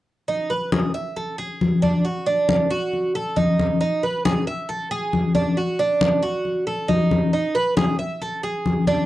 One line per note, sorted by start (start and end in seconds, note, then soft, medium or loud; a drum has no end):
0.28 0.50 D#4 medium
0.28 high conga soft
0.50 0.72 B4 medium
0.50 high conga soft
0.72 0.94 G#4 medium
0.72 high conga medium
0.94 1.16 E5 medium
0.94 high conga soft
1.16 1.38 A4 medium
1.16 high conga soft
1.38 1.81 G#4 medium
1.38 high conga soft
1.61 high conga medium
1.82 2.04 D4 medium
1.82 high conga medium
2.05 2.26 F#4 medium
2.05 high conga soft
2.26 2.69 D4 medium
2.26 high conga soft
2.49 high conga medium
2.70 3.13 F#4 medium
2.70 high conga soft
2.93 high conga soft
3.15 3.36 A4 medium
3.15 high conga soft
3.36 3.79 D#4 medium
3.36 high conga medium
3.59 high conga medium
3.81 4.02 D#4 medium
3.81 high conga soft
4.03 4.24 B4 medium
4.03 high conga soft
4.25 4.46 G#4 medium
4.25 high conga medium
4.47 4.68 E5 medium
4.47 high conga soft
4.69 4.90 A4 medium
4.69 high conga soft
4.91 5.34 G#4 medium
4.91 high conga soft
5.13 high conga medium
5.35 5.56 D4 medium
5.35 high conga medium
5.57 5.78 F#4 medium
5.57 high conga soft
5.79 6.22 D4 medium
5.79 high conga soft
6.01 high conga medium
6.22 6.66 F#4 medium
6.22 high conga soft
6.45 high conga soft
6.67 6.88 A4 medium
6.67 high conga soft
6.88 7.31 D#4 medium
6.88 high conga medium
7.11 high conga medium
7.33 7.55 D#4 medium
7.33 high conga soft
7.55 7.76 B4 medium
7.55 high conga soft
7.77 7.98 G#4 medium
7.77 high conga medium
7.99 8.20 E5 medium
7.99 high conga soft
8.22 8.43 A4 medium
8.22 high conga soft
8.43 8.86 G#4 medium
8.43 high conga soft
8.66 high conga medium
8.87 9.06 D4 medium
8.87 high conga medium